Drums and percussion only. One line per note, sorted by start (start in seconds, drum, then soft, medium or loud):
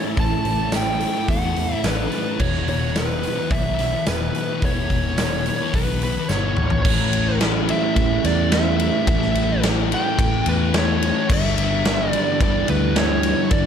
0.17 kick loud
0.17 open hi-hat medium
0.45 open hi-hat medium
0.72 snare loud
0.72 open hi-hat medium
0.72 tambourine medium
1.00 open hi-hat medium
1.28 kick loud
1.28 open hi-hat medium
1.56 open hi-hat medium
1.84 snare loud
1.84 open hi-hat medium
1.84 tambourine medium
2.12 open hi-hat medium
2.40 kick loud
2.40 crash loud
2.54 snare soft
2.68 open hi-hat medium
2.95 snare loud
2.95 open hi-hat medium
2.95 tambourine medium
3.23 open hi-hat medium
3.50 kick loud
3.50 open hi-hat medium
3.79 snare soft
3.79 open hi-hat medium
4.06 snare loud
4.06 open hi-hat medium
4.06 tambourine medium
4.35 open hi-hat medium
4.62 kick loud
4.62 open hi-hat medium
4.90 kick medium
4.90 open hi-hat medium
5.18 snare loud
5.18 open hi-hat medium
5.18 tambourine medium
5.46 open hi-hat medium
5.74 kick loud
5.74 open hi-hat medium
6.02 open hi-hat medium
6.29 snare medium
6.29 tambourine loud
6.57 mid tom medium
6.70 floor tom medium
6.85 kick loud
6.85 crash loud
7.13 ride medium
7.41 snare loud
7.41 ride loud
7.69 ride medium
7.96 kick loud
7.96 ride loud
8.24 snare soft
8.24 ride medium
8.52 snare loud
8.52 ride loud
8.79 ride medium
9.07 kick loud
9.07 ride loud
9.22 snare soft
9.35 ride medium
9.63 snare loud
9.63 ride loud
9.92 ride medium
10.19 kick loud
10.19 ride loud
10.46 ride medium
10.74 snare loud
10.74 ride loud
11.02 ride medium
11.30 kick loud
11.30 crash loud
11.44 snare soft
11.58 ride medium
11.85 snare loud
11.85 ride loud
12.13 ride medium
12.41 kick loud
12.41 ride loud
12.68 ride medium
12.96 snare loud
12.96 ride loud
13.23 ride medium
13.51 kick loud
13.51 ride loud